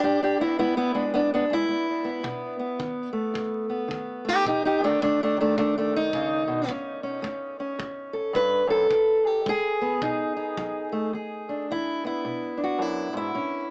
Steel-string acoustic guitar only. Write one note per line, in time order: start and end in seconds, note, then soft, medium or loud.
0.03 0.56 E2 medium
0.03 0.21 D4 medium
0.03 0.22 G4 loud
0.22 0.41 D4 medium
0.22 0.41 G4 medium
0.40 0.59 B3 soft
0.40 0.58 E4 medium
0.59 0.93 G#3 medium
0.59 0.76 B3 medium
0.59 0.76 E4 medium
0.77 0.93 B3 medium
0.77 0.96 E4 medium
0.94 1.49 G#3 soft
0.94 1.03 B3 medium
0.94 1.13 D4 medium
1.14 1.66 E2 medium
1.14 1.20 B3 medium
1.14 1.33 D4 medium
1.34 1.43 B3 medium
1.34 1.52 D4 medium
1.50 1.67 G#3 soft
1.50 2.26 E4 loud
1.69 2.20 G#3 medium
2.04 2.24 B3 soft
2.23 2.75 B2 medium
2.23 2.59 B3 soft
2.59 3.68 B3 soft
2.79 3.31 D#3 medium
3.13 4.24 A3 soft
3.34 3.86 F#2 medium
3.70 4.29 B3 soft
3.88 4.41 D#3 medium
4.25 4.47 A3 soft
4.25 4.47 G4 loud
4.29 4.46 D#4 medium
4.44 4.97 B2 medium
4.44 4.64 D#4 medium
4.44 4.65 G4 medium
4.65 4.84 D#4 medium
4.65 4.85 G4 medium
4.80 5.00 D#3 soft
4.80 5.01 A3 medium
4.85 5.01 D4 loud
5.01 5.36 D#3 medium
5.01 5.21 A3 medium
5.01 5.21 D4 medium
5.23 5.40 A3 medium
5.23 5.39 D4 medium
5.37 6.67 D#3 soft
5.37 5.57 D4 medium
5.41 5.57 A3 medium
5.57 6.09 F#2 medium
5.57 5.76 A3 medium
5.57 5.77 D4 medium
5.78 5.96 A3 medium
5.78 5.96 D4 medium
5.96 6.70 D#4 loud
6.14 6.47 C#3 medium
6.48 6.69 B2 medium
6.70 7.21 A2 medium
6.70 7.02 C#4 soft
7.03 7.59 C#4 soft
7.22 7.75 A3 medium
7.60 8.89 C#4 medium
7.79 8.31 E2 medium
8.13 8.35 A4 medium
8.33 8.67 G2 medium
8.33 8.70 B4 loud
8.67 8.90 F#2 medium
8.67 9.27 A4 medium
8.91 9.42 E2 medium
9.27 9.47 G4 loud
9.46 9.97 G#3 medium
9.46 11.13 G#4 loud
9.81 10.00 B3 soft
10.02 10.53 B2 medium
10.02 10.35 D#4 medium
10.37 11.11 D#4 medium
10.57 11.09 F#3 medium
10.92 11.11 A3 medium
11.13 11.64 E2 medium
11.13 11.69 G#4 soft
11.49 12.56 D4 soft
11.71 12.21 E3 medium
11.71 12.05 E4 medium
12.04 13.33 B3 soft
12.04 12.61 E4 medium
12.25 12.76 B2 medium
12.57 13.32 D4 soft
12.64 12.82 F#4 medium
12.78 13.12 F#2 medium
12.78 13.16 E4 medium
13.13 13.34 G#2 medium
13.17 13.71 E4 medium
13.34 13.71 A2 medium
13.34 13.69 C#4 soft